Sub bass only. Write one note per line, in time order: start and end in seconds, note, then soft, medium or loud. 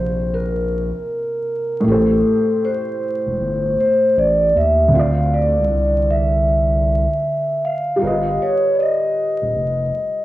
0.00 0.91 A#1 medium
1.86 2.22 A1 loud
3.27 3.39 E1 medium
3.41 3.76 G1 medium
4.17 4.53 A1 medium
4.56 4.91 D#2 medium
4.94 5.59 D2 loud
5.57 7.07 C2 medium
8.02 8.38 G1 loud
9.42 9.55 D#1 medium
9.56 9.91 F1 loud